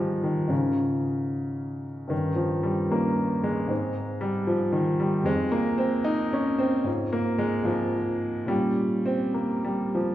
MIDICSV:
0, 0, Header, 1, 2, 480
1, 0, Start_track
1, 0, Key_signature, -4, "major"
1, 0, Tempo, 529568
1, 463, Time_signature, 6, 3, 24, 8
1, 4768, Key_signature, -4, "minor"
1, 6709, Tempo, 553506
1, 8149, Tempo, 594648
1, 9026, End_track
2, 0, Start_track
2, 0, Title_t, "Grand piano"
2, 0, Program_c, 0, 0
2, 0, Control_c, 0, 64, 127
2, 0, Note_on_c, 0, 44, 41
2, 0, Note_on_c, 0, 51, 76
2, 0, Note_on_c, 0, 53, 67
2, 0, Note_on_c, 0, 55, 70
2, 0, Note_on_c, 0, 56, 71
2, 0, Note_on_c, 0, 60, 36
2, 0, Note_on_c, 0, 63, 37
2, 0, Note_on_c, 0, 68, 35
2, 213, Note_off_c, 0, 51, 0
2, 213, Note_on_c, 0, 51, 71
2, 220, Note_off_c, 0, 53, 0
2, 409, Note_off_c, 0, 44, 0
2, 412, Note_off_c, 0, 60, 0
2, 414, Note_off_c, 0, 63, 0
2, 420, Note_off_c, 0, 68, 0
2, 430, Note_on_c, 0, 44, 45
2, 438, Note_on_c, 0, 61, 37
2, 443, Note_on_c, 0, 65, 36
2, 450, Note_on_c, 0, 49, 68
2, 452, Note_on_c, 0, 70, 39
2, 456, Note_off_c, 0, 51, 0
2, 479, Control_c, 0, 64, 0
2, 480, Note_off_c, 0, 56, 0
2, 481, Note_off_c, 0, 55, 0
2, 633, Control_c, 0, 64, 127
2, 1662, Note_off_c, 0, 49, 0
2, 1858, Note_off_c, 0, 44, 0
2, 1862, Note_off_c, 0, 61, 0
2, 1865, Note_off_c, 0, 65, 0
2, 1869, Note_off_c, 0, 70, 0
2, 1881, Note_on_c, 0, 43, 48
2, 1887, Note_on_c, 0, 61, 39
2, 1890, Note_on_c, 0, 63, 38
2, 1902, Note_on_c, 0, 51, 71
2, 1902, Note_on_c, 0, 70, 37
2, 1930, Control_c, 0, 64, 0
2, 2085, Control_c, 0, 64, 127
2, 2135, Note_on_c, 0, 53, 68
2, 2149, Note_off_c, 0, 51, 0
2, 2385, Note_on_c, 0, 55, 73
2, 2389, Note_off_c, 0, 53, 0
2, 2605, Note_off_c, 0, 43, 0
2, 2611, Note_off_c, 0, 61, 0
2, 2613, Note_off_c, 0, 63, 0
2, 2618, Note_on_c, 0, 43, 41
2, 2619, Note_off_c, 0, 70, 0
2, 2632, Note_on_c, 0, 61, 37
2, 2639, Note_off_c, 0, 55, 0
2, 2640, Note_on_c, 0, 63, 36
2, 2642, Note_on_c, 0, 58, 73
2, 2645, Note_on_c, 0, 70, 35
2, 3114, Note_on_c, 0, 56, 81
2, 3121, Note_off_c, 0, 58, 0
2, 3320, Note_off_c, 0, 43, 0
2, 3327, Note_off_c, 0, 61, 0
2, 3331, Note_off_c, 0, 63, 0
2, 3332, Note_on_c, 0, 44, 51
2, 3334, Note_off_c, 0, 70, 0
2, 3343, Note_on_c, 0, 60, 40
2, 3347, Note_on_c, 0, 63, 39
2, 3356, Note_on_c, 0, 72, 38
2, 3370, Control_c, 0, 64, 0
2, 3539, Control_c, 0, 64, 127
2, 3815, Note_on_c, 0, 55, 79
2, 3820, Note_off_c, 0, 56, 0
2, 4053, Note_on_c, 0, 53, 76
2, 4055, Note_off_c, 0, 55, 0
2, 4282, Note_on_c, 0, 51, 73
2, 4292, Note_off_c, 0, 53, 0
2, 4524, Note_off_c, 0, 51, 0
2, 4529, Note_on_c, 0, 55, 76
2, 4720, Note_off_c, 0, 44, 0
2, 4725, Note_off_c, 0, 60, 0
2, 4727, Note_off_c, 0, 63, 0
2, 4732, Note_off_c, 0, 72, 0
2, 4742, Note_on_c, 0, 41, 52
2, 4753, Note_on_c, 0, 60, 44
2, 4759, Note_on_c, 0, 65, 44
2, 4764, Note_on_c, 0, 56, 88
2, 4766, Note_on_c, 0, 72, 44
2, 4767, Note_off_c, 0, 55, 0
2, 4781, Control_c, 0, 64, 0
2, 4947, Control_c, 0, 64, 127
2, 5000, Note_on_c, 0, 58, 87
2, 5006, Note_off_c, 0, 56, 0
2, 5224, Note_off_c, 0, 60, 0
2, 5238, Note_on_c, 0, 60, 85
2, 5247, Note_off_c, 0, 58, 0
2, 5478, Note_on_c, 0, 63, 91
2, 5489, Note_off_c, 0, 60, 0
2, 5731, Note_off_c, 0, 63, 0
2, 5737, Note_on_c, 0, 61, 75
2, 5970, Note_on_c, 0, 60, 82
2, 5983, Note_off_c, 0, 61, 0
2, 6178, Note_off_c, 0, 41, 0
2, 6187, Note_off_c, 0, 65, 0
2, 6190, Note_off_c, 0, 72, 0
2, 6198, Note_off_c, 0, 60, 0
2, 6199, Note_on_c, 0, 44, 53
2, 6212, Note_on_c, 0, 60, 43
2, 6213, Note_on_c, 0, 65, 43
2, 6218, Note_on_c, 0, 72, 45
2, 6245, Control_c, 0, 64, 0
2, 6377, Control_c, 0, 64, 127
2, 6459, Note_on_c, 0, 58, 85
2, 6693, Note_on_c, 0, 56, 85
2, 6705, Note_off_c, 0, 58, 0
2, 6894, Note_off_c, 0, 44, 0
2, 6899, Note_off_c, 0, 60, 0
2, 6907, Note_off_c, 0, 65, 0
2, 6907, Note_on_c, 0, 44, 47
2, 6911, Note_off_c, 0, 72, 0
2, 6912, Note_on_c, 0, 60, 41
2, 6920, Note_on_c, 0, 65, 39
2, 6924, Note_on_c, 0, 53, 78
2, 6924, Note_on_c, 0, 72, 40
2, 6935, Note_off_c, 0, 56, 0
2, 7619, Note_off_c, 0, 44, 0
2, 7622, Note_off_c, 0, 60, 0
2, 7626, Note_off_c, 0, 65, 0
2, 7627, Note_on_c, 0, 46, 53
2, 7628, Note_off_c, 0, 72, 0
2, 7635, Note_on_c, 0, 61, 44
2, 7644, Note_on_c, 0, 55, 86
2, 7645, Note_on_c, 0, 65, 43
2, 7648, Note_on_c, 0, 67, 43
2, 7650, Note_off_c, 0, 53, 0
2, 7677, Control_c, 0, 64, 0
2, 7820, Control_c, 0, 64, 127
2, 8142, Note_off_c, 0, 55, 0
2, 8144, Note_on_c, 0, 60, 82
2, 8375, Note_on_c, 0, 58, 62
2, 8380, Note_off_c, 0, 60, 0
2, 8616, Note_off_c, 0, 58, 0
2, 8619, Note_on_c, 0, 55, 76
2, 8862, Note_on_c, 0, 53, 73
2, 8863, Note_off_c, 0, 55, 0
2, 9026, Note_off_c, 0, 46, 0
2, 9026, Note_off_c, 0, 53, 0
2, 9026, Note_off_c, 0, 61, 0
2, 9026, Note_off_c, 0, 65, 0
2, 9026, Note_off_c, 0, 67, 0
2, 9026, End_track
0, 0, End_of_file